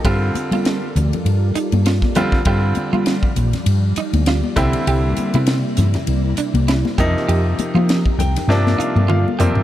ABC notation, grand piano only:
X:1
M:4/4
L:1/8
Q:"Swing 16ths" 1/4=100
K:Gm
V:1 name="Grand piano"
z8 | z8 | z8 | z3 g a f f d |]
V:2 name="Grand piano" clef=bass
[D,G,CF]3 z4 [D,G,CF] | [D,G,CF]3 z4 [D,G,C=E]- | [D,G,C=E]2 z4 z [C,F,B,_E]- | [C,F,B,E]2 z2 [C,F,B,D]2 z [C,F,B,C] |]